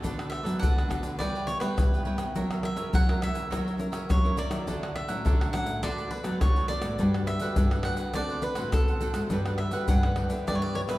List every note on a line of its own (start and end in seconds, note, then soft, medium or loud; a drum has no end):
0.02 0.58 D3 medium
0.02 0.40 D3 medium
0.02 0.42 A3 medium
0.02 0.42 B3 medium
0.02 0.16 D4 medium
0.02 0.42 F#4 medium
0.02 0.16 A4 medium
0.02 0.17 B4 medium
0.02 0.16 D5 medium
0.02 pandeiro medium
0.02 shaker medium
0.02 surdo medium
0.17 0.29 A4 soft
0.17 0.29 B4 soft
0.17 0.29 D5 soft
0.17 pandeiro soft
0.17 tamborim medium
0.17 shaker soft
0.30 0.59 E5 medium
0.30 muted cavaquinho stroke soft
0.30 pandeiro medium
0.30 tamborim medium
0.43 0.58 F#3 medium
0.43 0.84 A3 medium
0.43 0.85 B3 medium
0.43 0.85 F#4 medium
0.43 0.58 A4 medium
0.43 0.58 B4 medium
0.43 0.58 D5 medium
0.43 pandeiro medium
0.43 shaker medium
0.59 1.16 D3 medium
0.59 0.99 D3 loud
0.59 0.73 D4 medium
0.59 0.74 A4 medium
0.59 0.74 B4 medium
0.59 0.74 D5 medium
0.59 1.18 F#5 medium
0.59 pandeiro medium
0.59 shaker medium
0.59 surdo loud
0.76 0.87 A4 soft
0.76 0.88 B4 soft
0.76 0.88 D5 soft
0.76 pandeiro soft
0.76 tamborim medium
0.76 shaker soft
0.88 1.06 A3 medium
0.88 1.07 B3 medium
0.88 1.17 D4 soft
0.88 1.07 F#4 medium
0.88 1.17 A4 soft
0.88 1.17 B4 medium
0.88 1.18 D5 soft
0.88 pandeiro medium
0.88 tamborim medium
0.88 shaker medium
0.88 surdo medium
1.03 1.20 D3 medium
1.03 pandeiro medium
1.03 shaker medium
1.19 1.74 C#3 medium
1.19 1.57 C#3 loud
1.19 1.58 G3 medium
1.19 1.58 B3 medium
1.19 1.33 E4 medium
1.19 1.58 E4 medium
1.19 1.33 B4 medium
1.19 1.33 C#5 medium
1.19 1.49 D5 medium
1.19 1.33 G5 medium
1.19 pandeiro medium
1.19 tamborim medium
1.19 shaker medium
1.19 surdo medium
1.35 1.47 B4 soft
1.35 1.47 C#5 soft
1.35 1.47 G5 soft
1.35 pandeiro soft
1.35 shaker soft
1.47 1.60 C#5 medium
1.47 muted cavaquinho stroke soft
1.47 pandeiro medium
1.47 shaker medium
1.60 2.00 G3 medium
1.60 1.74 G3 medium
1.60 2.00 B3 medium
1.60 2.01 E4 medium
1.60 2.02 B4 medium
1.60 1.90 B4 medium
1.60 1.90 C#5 medium
1.60 1.90 G5 medium
1.60 pandeiro medium
1.60 tamborim medium
1.60 shaker medium
1.77 2.32 C#3 medium
1.77 2.02 C#3 medium
1.77 pandeiro medium
1.77 tamborim medium
1.77 shaker medium
1.77 surdo loud
1.93 2.05 B4 soft
1.93 2.05 C#5 soft
1.93 2.06 G5 soft
1.93 pandeiro soft
1.93 shaker soft
2.05 2.23 G3 soft
2.05 2.23 B3 medium
2.05 2.19 E4 medium
2.05 2.23 E4 medium
2.05 2.18 B4 medium
2.05 2.18 C#5 medium
2.05 2.17 G5 medium
2.05 pandeiro medium
2.18 2.31 C#3 medium
2.18 2.33 B4 soft
2.18 2.33 C#5 soft
2.18 2.33 G5 soft
2.18 pandeiro medium
2.18 tamborim medium
2.18 shaker medium
2.35 2.90 F#3 medium
2.35 2.72 F#3 medium
2.35 2.52 C#4 medium
2.35 2.53 E4 medium
2.35 2.49 F#4 medium
2.35 2.49 A#4 medium
2.35 2.53 A#4 medium
2.35 2.49 C#5 medium
2.35 2.49 E5 medium
2.35 pandeiro medium
2.35 shaker medium
2.35 surdo medium
2.51 2.62 A#4 soft
2.51 2.63 C#5 soft
2.51 2.62 E5 medium
2.51 pandeiro soft
2.51 tamborim medium
2.51 shaker soft
2.63 3.02 C#4 medium
2.63 3.02 E4 soft
2.63 3.03 A#4 medium
2.63 2.92 E5 medium
2.63 muted cavaquinho stroke soft
2.63 pandeiro medium
2.63 tamborim medium
2.76 2.90 C#3 medium
2.76 2.92 A#4 medium
2.76 2.91 C#5 medium
2.76 2.91 E5 medium
2.76 pandeiro medium
2.76 shaker medium
2.93 3.48 C#3 medium
2.93 3.30 F#3 loud
2.93 3.07 F#4 medium
2.93 3.07 A#4 medium
2.93 3.07 C#5 medium
2.93 3.08 E5 medium
2.93 3.23 F#5 medium
2.93 pandeiro medium
2.93 shaker medium
2.93 surdo loud
3.08 3.47 C#4 medium
3.08 3.47 E4 medium
3.08 3.47 A#4 medium
3.08 3.21 A#4 soft
3.08 3.21 C#5 soft
3.08 3.22 E5 soft
3.08 pandeiro soft
3.08 tamborim medium
3.08 shaker soft
3.21 3.49 F#4 soft
3.21 3.50 A#4 soft
3.21 3.50 C#5 soft
3.21 3.50 E5 medium
3.21 4.12 E5 medium
3.21 pandeiro medium
3.21 tamborim medium
3.21 shaker medium
3.34 3.50 C#3 medium
3.34 pandeiro medium
3.34 shaker medium
3.50 3.88 F#3 loud
3.50 4.07 F#3 medium
3.50 3.76 C#4 medium
3.50 3.76 E4 medium
3.50 3.64 F#4 medium
3.50 3.64 A#4 medium
3.50 3.76 A#4 medium
3.50 3.64 C#5 medium
3.50 3.63 E5 medium
3.50 pandeiro medium
3.50 tamborim medium
3.50 shaker medium
3.50 surdo medium
3.65 3.77 A#4 soft
3.65 3.77 C#5 soft
3.65 3.78 E5 soft
3.65 pandeiro soft
3.65 shaker soft
3.78 4.07 C#4 medium
3.78 4.07 E4 medium
3.78 4.07 A#4 medium
3.78 muted cavaquinho stroke soft
3.78 pandeiro medium
3.78 shaker medium
3.92 4.06 C#3 medium
3.92 4.22 A#4 medium
3.92 4.21 C#5 medium
3.92 4.21 E5 medium
3.92 pandeiro medium
3.92 tamborim medium
3.92 shaker medium
4.09 4.64 C#3 medium
4.09 4.34 F#3 medium
4.09 4.38 C#5 medium
4.09 pandeiro medium
4.09 tamborim medium
4.09 shaker medium
4.09 surdo loud
4.24 4.48 C#4 medium
4.24 4.49 E4 medium
4.24 4.49 A#4 medium
4.24 4.36 A#4 soft
4.24 4.36 C#5 soft
4.24 4.37 E5 soft
4.24 pandeiro soft
4.24 shaker soft
4.36 4.51 F#4 medium
4.36 4.51 A#4 medium
4.36 4.51 C#5 medium
4.36 4.98 D5 medium
4.36 4.50 E5 medium
4.36 pandeiro medium
4.36 shaker medium
4.50 4.64 D#3 medium
4.50 4.90 F#3 medium
4.50 4.91 E4 medium
4.50 4.66 A#4 soft
4.50 4.66 C#5 soft
4.50 4.65 E5 medium
4.50 pandeiro medium
4.50 tamborim medium
4.50 shaker medium
4.67 5.04 D3 medium
4.67 5.22 D3 medium
4.67 4.81 D4 medium
4.67 4.81 A4 medium
4.67 4.81 C#5 medium
4.67 4.81 F#5 medium
4.67 pandeiro medium
4.67 shaker medium
4.67 surdo medium
4.83 4.95 A4 soft
4.83 4.95 C#5 soft
4.83 4.95 F#5 soft
4.83 pandeiro soft
4.83 tamborim medium
4.83 shaker soft
4.95 5.50 E5 medium
4.95 muted cavaquinho stroke soft
4.95 pandeiro medium
4.95 tamborim medium
5.08 5.22 A2 medium
5.08 5.48 F#3 medium
5.08 5.49 C#4 medium
5.08 5.49 E4 medium
5.08 5.24 A4 medium
5.08 5.23 C#5 medium
5.08 5.23 F#5 medium
5.08 pandeiro medium
5.08 shaker medium
5.25 5.80 A2 soft
5.25 5.62 D3 loud
5.25 5.38 D4 medium
5.25 5.39 A4 medium
5.25 5.39 C#5 medium
5.25 5.39 F#5 medium
5.25 pandeiro medium
5.25 shaker medium
5.25 surdo loud
5.40 5.53 A4 soft
5.40 5.53 C#5 soft
5.40 5.53 F#5 soft
5.40 pandeiro soft
5.40 tamborim medium
5.40 shaker soft
5.53 5.70 F#3 medium
5.53 5.71 C#4 medium
5.53 5.82 D4 soft
5.53 5.71 E4 medium
5.53 5.82 A4 soft
5.53 5.82 C#5 medium
5.53 5.81 F#5 medium
5.53 5.82 F#5 soft
5.53 pandeiro medium
5.53 tamborim medium
5.53 shaker medium
5.66 5.83 A2 medium
5.66 pandeiro medium
5.66 shaker medium
5.83 6.20 D3 loud
5.83 6.38 D3 medium
5.83 6.10 A3 medium
5.83 6.11 B3 medium
5.83 5.97 D4 medium
5.83 6.11 F#4 medium
5.83 5.97 A4 medium
5.83 5.97 B4 medium
5.83 6.10 D5 medium
5.83 5.97 D5 medium
5.83 pandeiro medium
5.83 tamborim medium
5.83 shaker medium
5.83 surdo medium
5.98 6.10 A4 soft
5.98 6.11 B4 soft
5.98 6.11 D5 soft
5.98 pandeiro soft
5.98 shaker soft
6.11 6.41 B4 medium
6.11 muted cavaquinho stroke soft
6.11 pandeiro medium
6.23 6.38 F#3 medium
6.23 6.64 A3 medium
6.23 6.64 B3 medium
6.23 6.64 F#4 medium
6.23 6.54 A4 medium
6.23 6.54 B4 medium
6.23 6.54 D5 medium
6.23 pandeiro medium
6.23 tamborim medium
6.23 shaker medium
6.41 6.96 D3 medium
6.41 6.66 D3 medium
6.41 6.68 C#5 medium
6.41 pandeiro medium
6.41 tamborim medium
6.41 shaker medium
6.41 surdo loud
6.56 6.68 A4 soft
6.56 6.68 B4 soft
6.56 6.68 D5 soft
6.56 pandeiro soft
6.56 shaker soft
6.68 6.87 A3 medium
6.68 6.87 B3 medium
6.68 6.83 D4 medium
6.68 6.87 F#4 medium
6.68 6.83 A4 medium
6.68 6.82 B4 medium
6.68 7.29 D5 loud
6.68 6.82 D5 medium
6.68 pandeiro medium
6.68 shaker medium
6.82 6.96 A2 medium
6.82 6.98 A4 soft
6.82 6.98 B4 soft
6.82 6.97 D5 soft
6.82 pandeiro medium
6.82 tamborim medium
6.82 shaker medium
6.99 7.37 G2 medium
6.99 7.55 G3 medium
6.99 7.27 D4 medium
6.99 7.13 D4 medium
6.99 7.27 F#4 medium
6.99 7.13 G4 medium
6.99 7.27 B4 medium
6.99 7.14 B4 medium
6.99 7.14 F#5 medium
6.99 pandeiro medium
6.99 shaker medium
6.99 surdo medium
7.14 7.27 G4 soft
7.14 7.26 B4 soft
7.14 7.27 F#5 soft
7.14 pandeiro soft
7.14 tamborim medium
7.14 shaker soft
7.27 7.82 E5 medium
7.27 muted cavaquinho stroke soft
7.27 pandeiro medium
7.27 tamborim medium
7.27 shaker medium
7.39 7.54 D3 medium
7.39 7.81 D4 medium
7.39 7.81 F#4 medium
7.39 7.56 G4 medium
7.39 7.81 B4 medium
7.39 7.56 B4 medium
7.39 7.55 F#5 medium
7.39 pandeiro medium
7.39 shaker medium
7.56 7.94 G2 loud
7.56 8.13 D3 medium
7.56 7.71 D4 medium
7.56 7.71 G4 medium
7.56 7.71 B4 medium
7.56 7.71 F#5 medium
7.56 pandeiro medium
7.56 shaker medium
7.56 surdo loud
7.71 7.84 G4 soft
7.71 7.84 B4 soft
7.71 7.84 F#5 soft
7.71 pandeiro soft
7.71 tamborim medium
7.71 shaker soft
7.83 8.13 D4 soft
7.83 8.03 D4 medium
7.83 8.03 F#4 medium
7.83 8.13 G4 soft
7.83 8.14 B4 medium
7.83 8.03 B4 medium
7.83 8.13 F#5 medium
7.83 8.14 F#5 soft
7.83 pandeiro medium
7.83 tamborim medium
7.97 8.15 C#3 medium
7.97 pandeiro medium
7.97 shaker medium
8.14 8.52 D3 medium
8.14 8.71 D3 medium
8.14 8.43 A3 medium
8.14 8.43 C4 medium
8.14 8.29 D4 medium
8.14 8.43 F#4 medium
8.14 8.29 A4 medium
8.14 8.29 C5 medium
8.14 8.42 D5 medium
8.14 8.29 F#5 medium
8.14 pandeiro medium
8.14 tamborim medium
8.14 shaker medium
8.14 surdo medium
8.29 8.43 A4 soft
8.29 8.42 C5 soft
8.29 8.43 F#5 soft
8.29 pandeiro soft
8.29 shaker soft
8.42 8.71 B4 medium
8.42 muted cavaquinho stroke soft
8.42 pandeiro medium
8.42 shaker medium
8.55 8.70 A2 medium
8.55 8.97 A3 medium
8.55 8.97 C4 medium
8.55 8.97 F#4 medium
8.55 8.86 A4 medium
8.55 8.86 C5 medium
8.55 8.85 F#5 medium
8.55 pandeiro medium
8.55 tamborim medium
8.55 shaker medium
8.72 9.28 A2 medium
8.72 8.98 D3 medium
8.72 9.14 A4 medium
8.72 pandeiro medium
8.72 tamborim medium
8.72 shaker medium
8.72 surdo loud
8.88 9.00 A4 soft
8.88 9.01 C5 soft
8.88 9.02 F#5 medium
8.88 pandeiro soft
8.88 shaker soft
9.01 9.26 A3 medium
9.01 9.26 C4 medium
9.01 9.15 D4 medium
9.01 9.27 F#4 medium
9.01 9.15 A4 medium
9.01 9.14 C5 medium
9.01 9.13 F#5 medium
9.01 pandeiro medium
9.01 shaker medium
9.14 9.28 G#2 medium
9.14 9.30 A4 soft
9.14 9.29 C5 soft
9.14 9.29 F#5 soft
9.14 pandeiro medium
9.14 tamborim medium
9.14 shaker medium
9.30 9.68 G2 loud
9.30 9.87 G3 medium
9.30 9.59 D4 medium
9.30 9.45 D4 medium
9.30 9.59 F#4 medium
9.30 9.45 G4 medium
9.30 9.59 B4 medium
9.30 9.46 B4 medium
9.30 9.46 F#5 medium
9.30 pandeiro medium
9.30 shaker medium
9.30 surdo medium
9.46 9.59 G4 soft
9.46 9.59 B4 soft
9.46 9.60 F#5 medium
9.46 pandeiro soft
9.46 tamborim medium
9.46 shaker soft
9.58 9.88 E5 medium
9.58 muted cavaquinho stroke soft
9.58 pandeiro medium
9.58 tamborim medium
9.71 9.86 D3 medium
9.71 9.98 D4 medium
9.71 9.98 F#4 medium
9.71 9.88 G4 medium
9.71 9.99 B4 medium
9.71 9.88 B4 medium
9.71 9.87 F#5 medium
9.71 pandeiro medium
9.71 shaker medium
9.88 10.26 G2 loud
9.88 10.45 D3 medium
9.88 10.03 D4 medium
9.88 10.03 G4 medium
9.88 10.03 B4 medium
9.88 10.47 F#5 medium
9.88 10.04 F#5 medium
9.88 pandeiro medium
9.88 shaker medium
9.88 surdo loud
10.03 10.29 D4 medium
10.03 10.29 F#4 medium
10.03 10.16 G4 soft
10.03 10.29 B4 medium
10.03 10.17 B4 soft
10.03 10.17 F#5 soft
10.03 pandeiro soft
10.03 tamborim medium
10.03 shaker soft
10.16 10.46 D4 soft
10.16 10.46 G4 soft
10.16 10.46 B4 soft
10.16 10.46 F#5 medium
10.16 pandeiro medium
10.16 tamborim medium
10.30 10.46 D3 medium
10.30 10.70 D4 medium
10.30 10.71 E4 medium
10.30 10.71 B4 medium
10.30 pandeiro medium
10.30 shaker medium
10.47 10.84 G2 medium
10.47 10.98 G3 medium
10.47 10.61 D4 medium
10.47 10.61 G4 medium
10.47 10.61 B4 medium
10.47 10.55 D5 medium
10.47 10.61 E5 medium
10.47 pandeiro medium
10.47 tamborim medium
10.47 shaker medium
10.47 surdo medium
10.55 10.62 C#5 medium
10.62 10.75 G4 soft
10.62 10.75 B4 soft
10.62 10.77 D5 medium
10.62 10.75 E5 soft
10.62 pandeiro soft
10.62 shaker soft
10.75 10.98 D4 medium
10.75 10.98 E4 medium
10.75 10.98 B4 medium
10.75 10.80 C#5 medium
10.75 muted cavaquinho stroke soft
10.75 pandeiro medium
10.87 10.98 B2 medium
10.87 10.98 G4 medium
10.87 10.98 B4 medium
10.87 10.98 E5 medium
10.87 pandeiro medium
10.87 tamborim medium
10.87 shaker medium